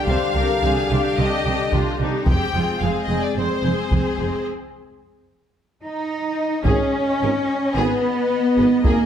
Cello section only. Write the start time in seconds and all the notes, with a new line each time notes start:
0.08 C3
0.35 C3
0.64 C3
0.91 C3
1.18 C3
1.45 C3
1.73 C3
2.01 C3
2.29 F2
2.55 F2
2.82 F2
3.10 F2
3.38 F2
3.65 F2
3.91 F2
4.20 F2
5.84 D#4
6.66 C#4
7.76 B3
8.85 A#3